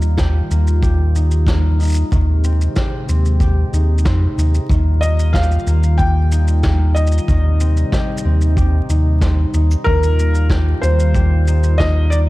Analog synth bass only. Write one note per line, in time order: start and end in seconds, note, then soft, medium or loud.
0.00 0.42 D#2 medium
0.51 2.03 D#2 medium
2.12 2.68 D#2 medium
3.09 3.65 D#2 medium
3.73 4.05 D#2 medium
4.06 4.27 F2 loud
4.37 4.59 D#2 medium
4.70 5.58 D#2 medium
5.67 7.19 D#2 loud
7.28 7.84 D#2 medium
8.25 8.81 D#2 loud
8.89 9.45 D#2 medium
9.54 9.75 D#2 loud
9.86 10.75 D#2 medium
10.83 12.29 D#2 loud